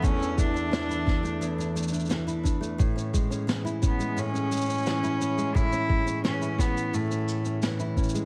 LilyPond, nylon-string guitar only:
\new Staff \with { instrumentName = "Nylon-string guitar" } { \time 4/4 \key a \major \tempo 4 = 87 <e, e a d' e'>16 d'16 a16 d'16 e16 e'16 d'16 a16 e,16 d'16 a16 d'16 e16 e'16 d'16 a16 | a,16 cis'16 gis16 cis'16 e16 e'16 cis'16 gis16 a,16 cis'16 gis16 cis'16 e16 e'16 cis'16 gis16 | a,16 cis'16 gis16 cis'16 e16 e'16 cis'8 a,16 cis'8 cis'16 e16 e'16 cis'16 gis16 | }